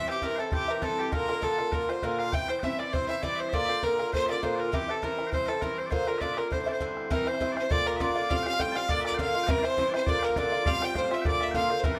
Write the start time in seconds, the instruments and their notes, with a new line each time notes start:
0.08 bouzouki E3 C4 E4, bagpipes G4, fiddle G4, bodhran
0.22 bouzouki G2 E3 C4 E4, bagpipes A#4, fiddle A#4, bodhran
0.35 bouzouki C4 E4, bagpipes A4 C5, bodhran
0.40 bouzouki E3, fiddle A4
0.51 bouzouki G2 E3 C4 E4, bagpipes G4, fiddle G4, bodhran
0.68 bouzouki E3 C4 E4, fiddle A#4, bodhran
0.82 bouzouki G2 E3 C4 E4, bagpipes A4, fiddle A4, bodhran
0.99 bagpipes G4, fiddle G4
1.12 bouzouki A#2 D3 A#3 F4, bagpipes A#4, fiddle A#4, bodhran
1.28 bouzouki D3 A#3 F4, bodhran
1.41 bouzouki A#2 D3 A#3 F4, bagpipes A4, fiddle A4, bodhran
1.58 bouzouki D3 A#3 F4, bodhran
1.72 bouzouki A#2 D3 A#3 F4, bagpipes A#4, fiddle A#4, bodhran
1.89 bouzouki D3 A#3 F4, bagpipes C5, fiddle C5, bodhran
2.02 bouzouki A#2 D3 A#3 F4, bagpipes A#4, fiddle A#4, bodhran
2.19 bagpipes F5, fiddle F5, bodhran
2.32 bouzouki G2 E3 C4 E4, bagpipes G5, fiddle G5, bodhran
2.49 bouzouki E3 C4 E4, bagpipes C5, fiddle C5, bodhran
2.60 bouzouki G2 E3, bagpipes E5 G5, fiddle E5, bodhran
2.64 bouzouki C4 E4
2.79 bouzouki E3 C4 E4, fiddle D5, bagpipes D5, bodhran
2.93 bouzouki G2 E3 C4 E4, fiddle C5, bagpipes C5, bodhran
3.09 bouzouki E3 C4 E4, fiddle E5, bodhran
3.23 bouzouki G2 E3 C4 E4, bagpipes D5, fiddle D5, bodhran
3.35 bagpipes E5
3.39 bagpipes C5, fiddle C5
3.49 bouzouki A#2, bagpipes E5
3.53 bouzouki D3 A#3 F4, bagpipes D5, fiddle D5, bodhran
3.65 bouzouki F4, bagpipes E5
3.69 bouzouki D3 A#3, bagpipes C5, bodhran
3.83 bouzouki A#2 D3 A#3 F4, fiddle A#4, bagpipes A#4, bodhran
3.99 bouzouki D3 A#3 F4, bodhran
4.13 bouzouki A#2 D3 A#3 F4, bagpipes C5, fiddle C5, bodhran
4.26 bouzouki A#3 F4, fiddle D5, bagpipes D5 E5, bodhran
4.31 bouzouki D3
4.43 bouzouki A#2 D3 A#3 F4, bagpipes C5, fiddle C5, bodhran
4.55 bagpipes A#4 D5
4.60 fiddle A#4
4.72 bouzouki G2 E3 C4 E4, fiddle G4, bagpipes G4, bodhran
4.88 bouzouki E3 C4 E4, bagpipes A4, fiddle A4, bodhran
5.02 bouzouki G2 E3 C4 E4, bagpipes A#4, fiddle A#4, bodhran
5.18 bouzouki E3 C4 E4, bodhran
5.26 bagpipes A#4 C5
5.33 bouzouki G2 E3 C4 E4, fiddle C5, bagpipes C5, bodhran
5.46 bouzouki E4, fiddle A4, bagpipes A4 A#4, bodhran
5.50 bouzouki E3 C4
5.62 bouzouki G2 E3 C4 E4, bagpipes A#4, fiddle A#4, bodhran
5.78 bagpipes C5, fiddle C5
5.86 bagpipes D5
5.91 bouzouki A#2 D3 A#3 F4, bagpipes C5, fiddle C5, bodhran
6.07 bouzouki D3 A#3 F4, bagpipes A#4, fiddle A#4, bodhran
6.18 bouzouki A#2 D3, fiddle D5, bagpipes D5 E5, bodhran
6.22 bouzouki A#3 F4
6.33 bouzouki F4, bagpipes E5
6.37 bouzouki D3 A#3, bagpipes A#4, fiddle A#4, bodhran
6.51 bouzouki G2 D3 C4 E4, fiddle C5, bagpipes C5, bodhran
6.62 fiddle C5
6.66 bouzouki D3 C4 E4, bagpipes D5, bodhran
6.72 bagpipes C5, fiddle C5
6.80 bouzouki G2 D3 C4 E4, bodhran
6.97 bodhran
7.10 bouzouki G2 E3 C4 E4, bagpipes A#4, fiddle A#4, bodhran
7.27 bouzouki E3 C4 E4, fiddle C5, bagpipes C5, bodhran
7.34 bodhran
7.40 bouzouki G2 E3 C4 E4, bodhran
7.52 bagpipes D5
7.56 bouzouki E3 C4 E4, bagpipes C5, fiddle C5, bodhran
7.70 bouzouki A#2 D3 A#3 F4, bagpipes D5, fiddle D5, bodhran
7.79 bodhran
7.86 fiddle A#4, bodhran
7.93 bagpipes E5, bodhran
8.00 bouzouki A#2 D3 A#3 F4, bagpipes D5, fiddle D5, bodhran
8.09 bodhran
8.16 bouzouki D3 A#3 F4
8.30 bouzouki A2 G3 C4 F4, bagpipes F5, fiddle F5, bodhran
8.43 bouzouki C4 F4, bagpipes F5 G5, bodhran
8.47 bouzouki G3, fiddle F5
8.53 bodhran
8.59 bouzouki A2 G3 C4 F4, bagpipes G5, fiddle G5, bodhran
8.72 bouzouki F4, bagpipes F5 A5, bodhran
8.76 bouzouki G3 C4, fiddle F5
8.88 bouzouki A#2 D3 A#3 F4, bagpipes D5, fiddle D5, bodhran
8.97 bagpipes E5, bodhran
9.04 bagpipes D5, fiddle D5, bodhran
9.12 bagpipes G5, bodhran
9.18 bouzouki A#2 D3 A#3 F4, bagpipes F5, fiddle F5, bodhran
9.27 bodhran
9.35 bouzouki D3 A#3 F4
9.44 bouzouki G2 E3, bagpipes A#4 G5
9.48 bouzouki C4 E4, fiddle A#4, bodhran
9.58 bagpipes D5
9.63 bouzouki E3 C4 E4, bagpipes C5, fiddle C5, bodhran
9.71 bodhran
9.77 bouzouki G2 E3 C4 E4, bodhran
9.90 bouzouki E4, bagpipes C5 D5, bodhran
9.95 bouzouki E3 C4, fiddle C5
10.06 bouzouki A#2 D3 A#3 F4, bagpipes D5, fiddle D5, bodhran
10.15 bodhran
10.19 bagpipes A#4 C5, bodhran
10.24 fiddle A#4
10.30 bodhran
10.36 bouzouki A#2 D3 A#3 F4, bagpipes D5, fiddle D5, bodhran
10.44 bodhran
10.52 bouzouki D3 A#3 F4
10.66 bouzouki A2 G3 C4 F4, bagpipes F5, fiddle F5, bodhran
10.82 bouzouki G3 C4 F4, bagpipes G5, fiddle G5, bodhran
10.95 bouzouki A2 G3 C4 F4, bagpipes C5, fiddle C5, bodhran
11.11 bouzouki G3 C4 F4, bagpipes E5, fiddle E5, bodhran
11.22 bouzouki A#2 D3, bagpipes D5 G5, bodhran
11.26 bouzouki A#3 F4, fiddle D5
11.40 bagpipes E5, fiddle E5, bodhran
11.48 bagpipes G5, bodhran
11.54 bouzouki A#2 D3 A#3 F4, bagpipes F5, fiddle F5, bodhran
11.62 bodhran
11.70 bouzouki D3 A#3 F4, bagpipes C5
11.80 bagpipes A#4, fiddle C5
11.84 bouzouki G2 E3 C4 E4, fiddle A#4, bodhran
11.95 bagpipes D5